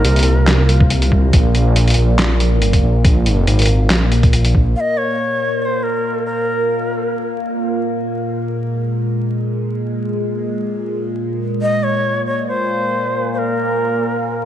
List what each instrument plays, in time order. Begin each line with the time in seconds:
Already playing: synth drone A#2 A#3, shakuhachi A#4
0.05 detuned saw bass C2, closed hi-hat
0.16 closed hi-hat
0.19 closed hi-hat
0.23 closed hi-hat
0.47 snare, clap, closed hi-hat
0.69 closed hi-hat
0.80 kick
0.90 closed hi-hat
1.02 closed hi-hat
1.12 kick
1.33 detuned saw bass A#1, kick, closed hi-hat
1.55 closed hi-hat
1.76 closed hi-hat
1.88 closed hi-hat
1.90 closed hi-hat
1.94 detuned saw bass A#1, closed hi-hat
2.19 snare, clap, closed hi-hat
2.40 closed hi-hat
2.62 closed hi-hat
2.73 kick, closed hi-hat
2.83 detuned saw bass A#1
3.05 kick, closed hi-hat
3.26 closed hi-hat
3.47 detuned saw bass G#1, closed hi-hat
3.59 closed hi-hat
3.62 closed hi-hat
3.66 closed hi-hat
3.90 detuned saw bass A#1, snare, clap, closed hi-hat
4.12 closed hi-hat
4.23 kick, closed hi-hat
4.33 closed hi-hat
4.45 closed hi-hat
4.55 kick
4.76 synth drone A#2 A#3, shakuhachi F5
4.80 shakuhachi D#5
4.97 shakuhachi C#5
5.62 shakuhachi C5 C#5
5.83 shakuhachi A#4
6.26 shakuhachi A#4
8.19 synth drone G#3
11.62 synth drone A#3, shakuhachi D#5
11.83 shakuhachi C#5
12.26 shakuhachi C#5
12.48 shakuhachi C5
13.33 shakuhachi C5
13.38 shakuhachi A#4